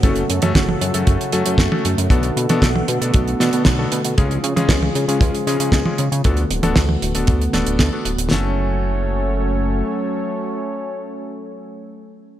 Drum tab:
HH |xxxxx-xxxxxxx-xx|xxxxx-xxxxxxx-xx|xxxxx-xxxxxxx-xx|xxxxx-xxxxxxx-xx|
SD |----o-------o---|----o-----o-o---|----o-------o---|----o-----o-o---|
T1 |---o-o-------o--|---o-o----o-----|---o-o-------o--|---o-o----o-----|
BD |o---o---o---o---|o---o---o---o---|o---o---o---o---|o---o---o---o---|

HH |----------------|----------------|
SD |o---------------|----------------|
T1 |----------------|----------------|
BD |----------------|----------------|